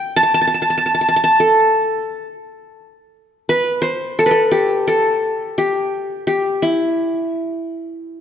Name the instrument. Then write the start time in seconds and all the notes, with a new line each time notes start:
qanun
Already playing: G5
0.16 A5
0.23 A5
0.34 A5
0.41 A5
0.47 A5
0.54 A5
0.62 A5
0.70 A5
0.78 A5
0.86 A5
0.95 A5
1.01 A5
1.09 A5
1.16 A5
1.24 A5
1.40 A4
3.49 B4
3.82 C5
4.19 A4
4.26 B4
4.31 A4
4.51 G4
4.88 A4
5.58 G4
6.27 G4
6.62 E4